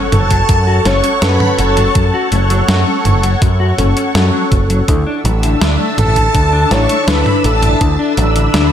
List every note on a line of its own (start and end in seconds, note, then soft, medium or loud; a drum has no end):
0.00 0.81 C#4 medium
0.00 0.81 F#4 medium
0.00 0.81 A4 medium
0.00 4.84 A4 medium
0.00 4.84 C#5 medium
0.00 4.84 F#5 medium
0.00 4.84 C#6 medium
0.00 impact medium
0.12 0.42 F#1 medium
0.12 0.87 A4 loud
0.12 0.82 A5 loud
0.12 closed hi-hat medium
0.12 mid tom medium
0.31 0.40 F#3 medium
0.31 kick medium
0.31 closed hi-hat medium
0.49 0.79 F#2 medium
0.49 0.55 F#3 medium
0.49 kick loud
0.49 closed hi-hat loud
0.67 0.81 F#4 loud
0.85 1.00 F#1 loud
0.85 1.18 C#4 medium
0.85 0.91 C#4 medium
0.85 1.18 F#4 medium
0.85 1.18 A4 loud
0.85 1.24 C#5 loud
0.85 1.20 C#6 loud
0.85 snare medium
0.85 closed hi-hat medium
1.04 1.09 C#4 medium
1.04 closed hi-hat medium
1.22 1.37 F#2 medium
1.22 1.36 F#3 medium
1.22 1.91 C#4 medium
1.22 1.91 F#4 medium
1.22 1.91 A4 loud
1.22 1.60 B4 loud
1.22 1.56 B5 loud
1.22 snare loud
1.22 closed hi-hat loud
1.40 1.50 F#3 medium
1.40 mid tom loud
1.59 1.88 F#1 medium
1.59 2.32 A4 medium
1.59 2.28 A5 medium
1.59 closed hi-hat medium
1.77 1.86 F#3 medium
1.77 closed hi-hat medium
1.77 mid tom medium
1.95 2.10 F#2 loud
1.95 2.01 F#3 medium
1.95 3.74 C#4 medium
1.95 3.74 F#4 medium
1.95 3.74 A4 medium
1.95 kick loud
1.95 closed hi-hat loud
2.14 2.27 F#4 loud
2.32 2.62 F#1 loud
2.32 2.38 A3 medium
2.32 closed hi-hat medium
2.50 2.64 F#3 medium
2.50 closed hi-hat medium
2.68 2.83 F#2 medium
2.68 2.82 F#4 medium
2.68 snare loud
2.68 closed hi-hat loud
2.87 2.96 C#4 medium
3.05 3.35 F#1 medium
3.05 closed hi-hat medium
3.05 mid tom medium
3.23 3.33 F#3 medium
3.23 closed hi-hat medium
3.42 3.71 F#2 medium
3.42 3.47 F#3 medium
3.42 kick loud
3.42 closed hi-hat loud
3.60 3.74 F#4 loud
3.78 3.93 F#1 loud
3.78 3.84 C#4 medium
3.78 4.11 C#4 medium
3.78 4.11 F#4 medium
3.78 4.11 A4 loud
3.78 closed hi-hat medium
3.78 mid tom medium
3.97 4.02 C#4 medium
3.97 closed hi-hat medium
4.15 4.30 F#2 medium
4.15 4.29 F#3 medium
4.15 4.84 C#4 medium
4.15 4.84 F#4 medium
4.15 4.84 A4 loud
4.15 snare loud
4.15 closed hi-hat loud
4.33 4.42 F#3 medium
4.52 4.81 F#1 medium
4.52 kick loud
4.52 closed hi-hat medium
4.70 4.79 F#3 medium
4.70 closed hi-hat medium
4.88 5.03 D2 loud
4.88 4.94 D3 medium
4.88 6.67 D4 medium
4.88 8.72 D4 medium
4.88 6.67 E4 medium
4.88 6.67 A4 medium
4.88 8.72 E5 medium
4.88 7.78 A5 medium
4.88 8.72 E6 medium
4.88 kick loud
4.88 closed hi-hat loud
5.07 5.20 D4 loud
5.25 5.54 A1 loud
5.25 5.30 F#3 medium
5.25 closed hi-hat medium
5.43 5.57 D3 medium
5.43 closed hi-hat medium
5.61 5.76 D2 medium
5.61 5.75 D4 medium
5.61 snare loud
5.61 closed hi-hat medium
5.80 5.89 A3 medium
5.98 6.27 A1 medium
5.98 6.73 A4 loud
5.98 6.67 A5 loud
5.98 closed hi-hat medium
5.98 mid tom medium
6.16 6.25 D3 medium
6.16 kick medium
6.16 closed hi-hat medium
6.34 6.64 D2 medium
6.34 6.40 D3 medium
6.34 kick loud
6.34 closed hi-hat loud
6.53 6.66 D4 loud
6.71 6.86 A1 loud
6.71 6.77 A3 medium
6.71 7.03 D4 medium
6.71 7.03 E4 medium
6.71 7.03 A4 medium
6.71 7.09 C#5 loud
6.71 7.05 C#6 loud
6.71 snare medium
6.71 closed hi-hat medium
6.89 6.95 A3 medium
6.89 closed hi-hat medium
7.08 7.22 D2 medium
7.08 7.21 D3 medium
7.08 7.77 D4 medium
7.08 7.77 E4 medium
7.08 7.77 A4 loud
7.08 7.46 B4 loud
7.08 7.42 B5 loud
7.08 snare loud
7.08 closed hi-hat loud
7.26 7.35 D3 medium
7.26 mid tom medium
7.44 7.74 A1 loud
7.44 8.17 A4 loud
7.44 8.13 A5 medium
7.44 closed hi-hat medium
7.63 7.72 D3 medium
7.63 closed hi-hat medium
7.63 mid tom medium
7.81 7.96 D2 loud
7.81 7.86 D3 medium
7.81 8.72 D4 medium
7.81 8.72 E4 medium
7.81 8.72 A4 medium
7.81 8.72 B5 medium
7.81 kick loud
7.81 closed hi-hat medium
7.99 8.13 D4 loud
8.17 8.47 A1 loud
8.17 8.23 F#3 medium
8.17 closed hi-hat medium
8.36 8.49 D3 medium
8.36 closed hi-hat medium
8.54 8.69 D2 medium
8.54 8.68 D4 medium
8.54 snare loud
8.54 closed hi-hat medium